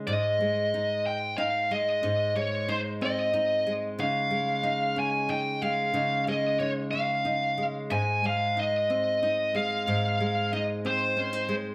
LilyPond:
<<
  \new Staff \with { instrumentName = "Lead electric guitar" } { \time 6/8 \key aes \major \tempo 4. = 61 ees''4. g''8 f''8 ees''8~ | ees''8 des''8 c''8 ees''4 r8 | f''4. aes''8 g''8 f''8~ | f''8 ees''8 des''8 f''4 r8 |
aes''8 f''8 ees''4. f''8~ | f''4 ees''8 c''4 r8 | }
  \new Staff \with { instrumentName = "Nylon-string guitar" } { \time 6/8 \key aes \major <aes, ees'>8 aes8 ees'4 ees'8 aes8 | <aes, ees'>8 aes8 ees'8 c'8 ees'8 aes8 | <des ees'>8 aes8 ees'8 des'8 ees'8 aes8 | <des ees'>8 aes8 ees'8 des'8 ees'8 aes8 |
<aes, ees'>8 aes8 ees'8 c'8 ees'8 aes8 | <aes, ees'>8 aes8 ees'8 c'8 des'16 ees'16 aes8 | }
>>